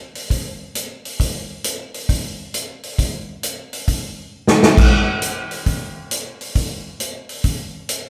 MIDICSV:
0, 0, Header, 1, 2, 480
1, 0, Start_track
1, 0, Tempo, 446429
1, 1287, Time_signature, 4, 2, 24, 8
1, 8698, End_track
2, 0, Start_track
2, 0, Title_t, "Drums"
2, 163, Note_on_c, 9, 46, 43
2, 271, Note_off_c, 9, 46, 0
2, 327, Note_on_c, 9, 36, 34
2, 332, Note_on_c, 9, 46, 50
2, 434, Note_off_c, 9, 36, 0
2, 439, Note_off_c, 9, 46, 0
2, 808, Note_on_c, 9, 42, 59
2, 915, Note_off_c, 9, 42, 0
2, 1130, Note_on_c, 9, 46, 41
2, 1238, Note_off_c, 9, 46, 0
2, 1288, Note_on_c, 9, 36, 35
2, 1295, Note_on_c, 9, 46, 52
2, 1395, Note_off_c, 9, 36, 0
2, 1402, Note_off_c, 9, 46, 0
2, 1765, Note_on_c, 9, 42, 64
2, 1873, Note_off_c, 9, 42, 0
2, 2088, Note_on_c, 9, 46, 43
2, 2195, Note_off_c, 9, 46, 0
2, 2247, Note_on_c, 9, 36, 36
2, 2249, Note_on_c, 9, 46, 51
2, 2355, Note_off_c, 9, 36, 0
2, 2356, Note_off_c, 9, 46, 0
2, 2730, Note_on_c, 9, 42, 57
2, 2838, Note_off_c, 9, 42, 0
2, 3048, Note_on_c, 9, 46, 43
2, 3155, Note_off_c, 9, 46, 0
2, 3209, Note_on_c, 9, 36, 35
2, 3212, Note_on_c, 9, 46, 55
2, 3317, Note_off_c, 9, 36, 0
2, 3320, Note_off_c, 9, 46, 0
2, 3689, Note_on_c, 9, 42, 63
2, 3796, Note_off_c, 9, 42, 0
2, 4008, Note_on_c, 9, 46, 46
2, 4116, Note_off_c, 9, 46, 0
2, 4169, Note_on_c, 9, 36, 34
2, 4170, Note_on_c, 9, 46, 52
2, 4277, Note_off_c, 9, 36, 0
2, 4277, Note_off_c, 9, 46, 0
2, 4811, Note_on_c, 9, 38, 69
2, 4919, Note_off_c, 9, 38, 0
2, 4975, Note_on_c, 9, 38, 82
2, 5083, Note_off_c, 9, 38, 0
2, 5133, Note_on_c, 9, 36, 80
2, 5139, Note_on_c, 9, 49, 82
2, 5241, Note_off_c, 9, 36, 0
2, 5246, Note_off_c, 9, 49, 0
2, 5610, Note_on_c, 9, 42, 59
2, 5717, Note_off_c, 9, 42, 0
2, 5922, Note_on_c, 9, 46, 42
2, 6030, Note_off_c, 9, 46, 0
2, 6088, Note_on_c, 9, 46, 43
2, 6089, Note_on_c, 9, 36, 32
2, 6195, Note_off_c, 9, 46, 0
2, 6197, Note_off_c, 9, 36, 0
2, 6569, Note_on_c, 9, 42, 61
2, 6677, Note_off_c, 9, 42, 0
2, 6889, Note_on_c, 9, 46, 36
2, 6997, Note_off_c, 9, 46, 0
2, 7047, Note_on_c, 9, 36, 37
2, 7047, Note_on_c, 9, 46, 51
2, 7155, Note_off_c, 9, 36, 0
2, 7155, Note_off_c, 9, 46, 0
2, 7525, Note_on_c, 9, 42, 56
2, 7633, Note_off_c, 9, 42, 0
2, 7838, Note_on_c, 9, 46, 40
2, 7946, Note_off_c, 9, 46, 0
2, 7997, Note_on_c, 9, 46, 48
2, 8001, Note_on_c, 9, 36, 36
2, 8105, Note_off_c, 9, 46, 0
2, 8109, Note_off_c, 9, 36, 0
2, 8481, Note_on_c, 9, 42, 61
2, 8588, Note_off_c, 9, 42, 0
2, 8698, End_track
0, 0, End_of_file